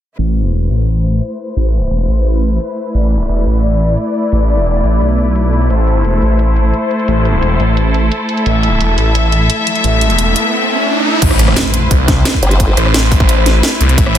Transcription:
0.18 0.52 A1 medium
0.18 11.18 A3 medium
0.18 11.18 E4 medium
0.18 5.66 B4 medium
0.18 2.93 C5 medium
0.18 closed hi-hat medium
0.36 closed hi-hat medium
0.53 0.69 E1 medium
0.53 closed hi-hat medium
0.70 1.21 A1 medium
0.70 closed hi-hat medium
0.88 closed hi-hat medium
1.05 closed hi-hat medium
1.22 closed hi-hat medium
1.39 closed hi-hat medium
1.48 closed hi-hat soft
1.56 1.90 A1 medium
1.56 closed hi-hat medium
1.74 closed hi-hat medium
1.91 2.07 E1 medium
1.91 closed hi-hat medium
2.08 2.58 A1 medium
2.08 closed hi-hat medium
2.25 closed hi-hat medium
2.43 closed hi-hat medium
2.60 closed hi-hat medium
2.77 closed hi-hat medium
2.86 closed hi-hat soft
2.94 3.28 A1 medium
2.94 5.69 D5 medium
2.94 closed hi-hat medium
3.12 closed hi-hat medium
3.29 3.45 E1 medium
3.29 closed hi-hat medium
3.46 3.96 A1 medium
3.46 closed hi-hat medium
3.63 closed hi-hat medium
3.81 closed hi-hat medium
3.98 closed hi-hat medium
4.15 closed hi-hat medium
4.24 closed hi-hat soft
4.32 4.65 A1 medium
4.32 closed hi-hat medium
4.49 closed hi-hat medium
4.67 4.83 E1 medium
4.67 closed hi-hat medium
4.84 5.00 A1 medium
4.84 closed hi-hat medium
5.01 5.69 B1 loud
5.01 closed hi-hat medium
5.18 closed hi-hat medium
5.36 closed hi-hat medium
5.53 closed hi-hat medium
5.62 closed hi-hat soft
5.70 6.03 A1 medium
5.70 11.18 A4 medium
5.70 8.45 C5 medium
5.70 closed hi-hat medium
5.87 closed hi-hat medium
6.05 6.21 E1 medium
6.05 closed hi-hat medium
6.22 6.72 A1 medium
6.22 closed hi-hat medium
6.39 closed hi-hat medium
6.56 closed hi-hat medium
6.74 closed hi-hat medium
6.91 closed hi-hat medium
7.00 closed hi-hat soft
7.08 7.41 A1 loud
7.08 closed hi-hat medium
7.25 closed hi-hat medium
7.43 7.59 E1 medium
7.43 closed hi-hat medium
7.60 8.10 A1 medium
7.60 closed hi-hat medium
7.77 closed hi-hat medium
7.94 closed hi-hat medium
8.12 closed hi-hat medium
8.29 closed hi-hat medium
8.37 closed hi-hat soft
8.46 8.79 A1 medium
8.46 11.21 E5 medium
8.46 closed hi-hat medium
8.46 riser medium
8.63 closed hi-hat medium
8.81 8.96 E1 medium
8.81 closed hi-hat medium
8.98 9.48 A1 medium
8.98 closed hi-hat medium
9.15 closed hi-hat medium
9.32 closed hi-hat medium
9.50 closed hi-hat medium
9.67 closed hi-hat medium
9.75 closed hi-hat soft
9.84 10.17 A1 medium
9.84 closed hi-hat loud
10.01 closed hi-hat medium
10.10 closed hi-hat soft
10.18 10.34 E1 medium
10.18 closed hi-hat medium
10.36 closed hi-hat medium
11.22 11.55 A1 loud
11.22 14.18 A3 medium
11.22 14.18 E4 medium
11.22 14.18 B4 medium
11.22 13.97 C5 medium
11.22 kick loud
11.22 closed hi-hat loud
11.22 crash loud
11.22 impact medium
11.31 cross-stick medium
11.39 cross-stick soft
11.39 closed hi-hat medium
11.48 cross-stick medium
11.57 snare loud
11.57 closed hi-hat loud
11.74 closed hi-hat medium
11.91 12.24 C2 loud
11.91 kick loud
11.91 closed hi-hat loud
12.08 kick loud
12.08 snare soft
12.08 closed hi-hat medium
12.25 snare loud
12.25 closed hi-hat loud
12.34 kick medium
12.43 12.76 G1 medium
12.43 closed hi-hat medium
12.51 closed hi-hat soft
12.60 kick loud
12.60 closed hi-hat medium
12.77 13.62 A1 loud
12.77 cross-stick soft
12.77 closed hi-hat medium
12.86 cross-stick medium
12.94 snare loud
12.94 closed hi-hat medium
13.12 kick loud
13.12 open hi-hat medium
13.20 kick loud
13.29 closed hi-hat loud
13.46 snare soft
13.46 closed hi-hat medium
13.63 snare loud
13.63 closed hi-hat loud
13.81 13.96 C2 loud
13.81 closed hi-hat medium
13.89 closed hi-hat soft
13.98 14.18 A1 loud
13.98 14.18 E5 medium
13.98 kick loud
13.98 closed hi-hat medium
14.06 cross-stick medium

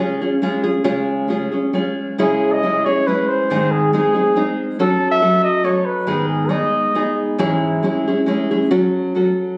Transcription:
0.00 0.20 G#3 medium
0.00 0.20 C#4 medium
0.00 0.20 F4 medium
0.00 0.20 G#4 medium
0.22 0.42 C#4 soft
0.22 0.42 F4 soft
0.22 0.42 G#4 soft
0.42 0.64 G#3 medium
0.42 0.63 C#4 medium
0.42 0.63 F4 medium
0.42 0.62 G#4 medium
0.64 0.83 C#4 soft
0.64 0.83 F4 soft
0.64 0.84 G#4 medium
0.84 1.28 C#3 medium
0.84 1.28 G#3 medium
0.84 1.28 C#4 medium
0.84 1.28 F4 medium
0.84 1.30 G#4 medium
1.28 1.51 G#3 medium
1.28 1.52 C#4 medium
1.28 1.51 F4 medium
1.28 1.50 G#4 medium
1.52 1.72 C#4 soft
1.52 1.73 F4 soft
1.52 1.73 G#4 soft
1.73 2.18 G#3 soft
1.73 2.18 C#4 soft
1.73 2.19 F4 medium
1.73 2.19 G#4 medium
2.18 2.63 C#3 medium
2.18 2.63 G#3 medium
2.18 2.62 C#4 medium
2.18 2.63 E4 medium
2.18 2.64 G#4 medium
2.18 2.54 G#4 medium
2.53 2.87 D#5 medium
2.63 2.86 G#3 medium
2.63 2.86 C#4 soft
2.63 2.86 E4 medium
2.63 2.85 G#4 medium
2.85 3.06 C#4 soft
2.85 3.07 E4 soft
2.85 3.07 G#4 soft
2.85 3.09 C#5 medium
3.07 3.50 G#3 medium
3.07 3.50 C#4 medium
3.07 3.51 E4 medium
3.07 3.50 G#4 medium
3.07 3.30 B4 medium
3.28 3.73 C5 medium
3.50 3.93 G#2 medium
3.50 3.93 D#3 medium
3.50 3.92 G#3 medium
3.50 3.93 C4 medium
3.50 3.93 D#4 medium
3.50 3.93 G#4 medium
3.72 3.93 G#4 medium
3.93 4.15 G#3 medium
3.93 4.14 C4 soft
3.93 4.14 D#4 medium
3.93 4.54 G#4 medium
3.93 4.13 G#4 medium
4.14 4.34 G#3 soft
4.14 4.35 C4 soft
4.14 4.35 D#4 soft
4.14 4.36 G#4 soft
4.36 4.78 G#3 medium
4.36 4.79 C4 medium
4.36 4.79 D#4 medium
4.36 4.79 G#4 medium
4.79 5.20 F#3 medium
4.79 5.20 C#4 medium
4.79 5.21 F#4 medium
4.79 5.21 A4 medium
4.79 5.10 A4 loud
5.12 5.41 E5 loud
5.21 5.62 F#3 medium
5.21 5.63 C#4 soft
5.21 5.63 F#4 medium
5.21 5.64 A4 medium
5.44 5.67 D#5 loud
5.63 6.06 F#3 medium
5.63 6.07 C#4 medium
5.63 6.07 F#4 medium
5.63 6.07 A4 medium
5.63 5.87 C#5 medium
5.86 6.28 B4 medium
6.07 6.50 G#2 medium
6.07 6.50 D#3 medium
6.07 6.49 G#3 medium
6.07 6.49 B3 medium
6.07 6.49 D#4 medium
6.07 6.50 G#4 medium
6.28 6.53 G#4 medium
6.49 6.93 G#3 medium
6.49 6.94 B3 medium
6.49 6.94 D#4 medium
6.49 6.94 G#4 soft
6.49 7.18 D#5 medium
6.94 7.38 G#3 soft
6.94 7.39 B3 medium
6.94 7.39 D#4 medium
6.94 7.39 G#4 medium
7.38 7.83 G#2 medium
7.38 7.83 E3 medium
7.38 7.82 G#3 medium
7.38 7.83 C#4 medium
7.38 7.83 E4 medium
7.38 7.84 G#4 medium
7.83 8.06 G#3 medium
7.83 8.06 C#4 medium
7.83 8.07 E4 medium
7.83 8.06 G#4 medium
8.08 8.25 G#3 soft
8.08 8.26 C#4 soft
8.08 8.27 E4 soft
8.08 8.27 G#4 soft
8.26 8.50 G#3 medium
8.26 8.50 C#4 medium
8.26 8.50 E4 medium
8.26 8.50 G#4 medium
8.51 8.70 G#3 soft
8.51 8.70 C#4 soft
8.51 8.70 E4 soft
8.51 8.71 G#4 medium
8.71 9.13 F#3 medium
8.71 9.14 C#4 medium
8.71 9.14 F#4 medium
8.71 9.15 A4 medium
9.15 9.56 F#3 medium
9.15 9.57 C#4 medium
9.15 9.57 F#4 medium
9.15 9.57 A4 medium

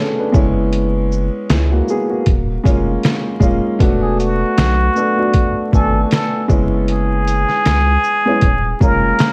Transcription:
0.00 0.36 A3 medium
0.00 0.33 B3 medium
0.00 0.18 C#4 medium
0.00 0.20 D4 medium
0.00 0.36 F#4 medium
0.00 0.36 G#4 medium
0.00 0.36 A4 medium
0.19 0.55 D4 medium
0.19 0.55 B4 medium
0.32 1.30 F#1 loud
0.32 1.49 G#3 medium
0.32 1.49 B3 medium
0.32 1.50 C#4 medium
0.32 1.49 E4 loud
0.32 kick loud
0.32 shaker soft
0.73 closed hi-hat medium
1.12 shaker soft
1.50 1.82 C#2 loud
1.50 1.71 G#3 medium
1.50 1.71 E4 medium
1.50 finger snap medium
1.50 snare loud
1.50 closed hi-hat medium
1.72 1.88 A#3 medium
1.72 1.88 F#4 medium
1.88 2.10 B3 medium
1.88 2.10 G#4 medium
1.88 shaker soft
2.10 2.47 A#3 soft
2.10 2.46 F#4 medium
2.26 2.59 D#1 loud
2.26 kick loud
2.26 closed hi-hat medium
2.64 2.97 F1 medium
2.64 3.36 G#3 medium
2.64 3.37 A#3 medium
2.64 3.37 C#4 medium
2.64 3.38 F4 medium
2.64 kick loud
2.64 closed hi-hat soft
2.64 shaker soft
3.03 finger snap medium
3.03 snare loud
3.03 closed hi-hat medium
3.40 3.59 D#1 loud
3.40 3.77 G#3 medium
3.40 3.77 A#3 medium
3.40 3.78 C#4 medium
3.40 3.79 F4 medium
3.40 kick medium
3.40 shaker soft
3.79 4.44 E1 loud
3.79 4.88 A3 loud
3.79 4.88 B3 medium
3.79 4.89 D4 medium
3.79 4.89 F#4 loud
3.79 kick loud
3.79 closed hi-hat medium
4.02 4.21 G#4 medium
4.19 5.69 F#4 loud
4.19 closed hi-hat soft
4.19 shaker soft
4.58 4.90 B1 medium
4.58 finger snap medium
4.58 snare loud
4.58 closed hi-hat medium
4.95 5.14 A3 medium
4.95 5.16 B3 medium
4.95 5.17 D4 medium
4.95 5.17 A4 medium
4.95 shaker soft
5.16 5.68 A3 medium
5.16 5.69 B3 medium
5.16 5.70 D4 medium
5.16 5.70 F#4 medium
5.34 kick medium
5.34 closed hi-hat medium
5.72 6.05 G#1 loud
5.72 6.49 A3 medium
5.72 6.48 B3 medium
5.72 6.50 D4 medium
5.72 6.08 A4 medium
5.72 6.51 G#5 medium
5.72 kick loud
5.72 shaker soft
6.11 6.46 A4 medium
6.11 finger snap loud
6.11 snare loud
6.11 closed hi-hat medium
6.48 7.45 F#1 loud
6.48 7.93 G#3 medium
6.48 7.93 B3 medium
6.48 7.94 C#4 medium
6.48 7.95 E4 medium
6.48 kick loud
6.48 shaker soft
6.88 8.77 G#4 loud
6.88 closed hi-hat medium
7.28 closed hi-hat soft
7.28 shaker soft
7.49 snare soft
7.65 7.98 C#2 loud
7.65 finger snap loud
7.65 snare loud
7.65 closed hi-hat medium
8.04 shaker soft
8.26 8.42 G#3 medium
8.26 8.43 B3 medium
8.26 8.44 C#4 medium
8.26 8.44 E4 medium
8.41 8.74 D#1 loud
8.41 kick medium
8.41 closed hi-hat medium
8.80 9.13 F1 medium
8.80 9.33 G#3 medium
8.80 9.33 A#3 medium
8.80 9.33 C#4 medium
8.80 9.33 F4 medium
8.80 9.33 A#4 medium
8.80 kick loud
8.80 shaker soft
9.19 finger snap medium
9.19 snare loud
9.19 closed hi-hat medium

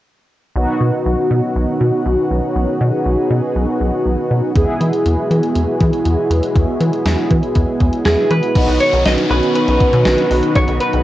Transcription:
0.56 0.66 B1 loud
0.56 4.52 D#3 medium
0.56 4.52 F#3 medium
0.56 8.52 B3 medium
0.56 4.52 B3 medium
0.56 4.52 C#4 medium
0.56 4.52 D#4 medium
0.56 2.54 F#4 medium
0.56 4.52 F#4 medium
0.81 0.91 B2 medium
1.06 1.16 B1 loud
1.31 1.41 B2 medium
1.56 1.66 B1 loud
1.81 1.91 B2 medium
2.06 2.16 B1 loud
2.31 2.41 B1 medium
2.56 2.66 B1 loud
2.56 4.54 G#4 medium
2.81 2.91 B2 loud
3.06 3.16 B1 loud
3.30 3.41 B2 medium
3.55 3.66 B1 loud
3.81 3.91 B1 loud
4.06 4.16 B1 medium
4.31 4.41 B2 medium
4.56 4.66 E2 loud
4.56 8.52 E3 medium
4.56 8.52 F#3 medium
4.56 8.52 G#3 medium
4.56 8.52 B3 medium
4.56 8.52 E4 medium
4.56 8.52 F#4 medium
4.56 8.52 G#4 medium
4.56 kick loud
4.56 closed hi-hat medium
4.81 4.91 E3 medium
4.81 closed hi-hat medium
4.93 closed hi-hat soft
5.06 5.16 E2 loud
5.06 closed hi-hat medium
5.30 5.41 E3 loud
5.30 closed hi-hat medium
5.43 closed hi-hat soft
5.55 5.66 E2 loud
5.55 closed hi-hat medium
5.80 5.91 E3 medium
5.80 kick medium
5.80 closed hi-hat medium
5.93 closed hi-hat soft
6.05 6.16 E2 loud
6.05 closed hi-hat medium
6.30 6.41 E2 loud
6.30 closed hi-hat medium
6.43 closed hi-hat medium
6.56 6.66 E2 loud
6.56 kick loud
6.56 closed hi-hat medium
6.81 6.91 E3 medium
6.81 closed hi-hat medium
6.93 closed hi-hat soft
7.05 7.16 E2 loud
7.05 snare loud
7.05 closed hi-hat medium
7.31 7.41 E3 loud
7.31 kick medium
7.31 closed hi-hat medium
7.43 closed hi-hat soft
7.55 7.66 E2 loud
7.55 kick medium
7.55 closed hi-hat medium
7.80 7.91 E2 medium
7.80 kick medium
7.80 closed hi-hat medium
7.93 closed hi-hat soft
8.05 8.16 E2 loud
8.05 8.31 G#4 medium
8.05 snare loud
8.05 closed hi-hat medium
8.31 8.41 E3 medium
8.31 8.80 B4 loud
8.31 closed hi-hat medium
8.43 closed hi-hat medium
8.55 8.66 B1 loud
8.55 11.03 D#3 medium
8.55 11.03 F#3 medium
8.55 11.03 B3 medium
8.55 10.54 C#4 medium
8.55 11.03 D#4 medium
8.55 11.03 F#4 medium
8.55 kick loud
8.55 closed hi-hat medium
8.55 crash loud
8.55 downlifter medium
8.68 8.79 B1 loud
8.68 closed hi-hat medium
8.80 9.05 C#5 loud
8.80 closed hi-hat medium
8.93 9.04 B1 loud
8.93 closed hi-hat soft
9.06 9.16 B1 loud
9.06 9.12 D#5 loud
9.06 snare loud
9.06 closed hi-hat medium
9.18 closed hi-hat medium
9.30 9.41 B1 loud
9.30 9.54 B4 loud
9.30 open hi-hat medium
9.43 closed hi-hat soft
9.55 10.55 B4 loud
9.55 closed hi-hat medium
9.68 9.79 B1 loud
9.68 closed hi-hat medium
9.80 kick medium
9.80 closed hi-hat medium
9.93 10.04 B2 loud
9.93 closed hi-hat medium
10.05 10.16 B1 loud
10.05 snare loud
10.05 closed hi-hat medium
10.18 closed hi-hat soft
10.31 10.41 B1 loud
10.31 open hi-hat medium
10.43 closed hi-hat medium
10.55 10.66 B1 loud
10.55 11.03 D#4 medium
10.55 10.80 C#5 loud
10.55 kick loud
10.55 closed hi-hat medium
10.68 10.79 B1 medium
10.68 closed hi-hat medium
10.80 11.03 B4 medium
10.80 closed hi-hat medium
10.93 11.03 B1 loud
10.93 closed hi-hat soft

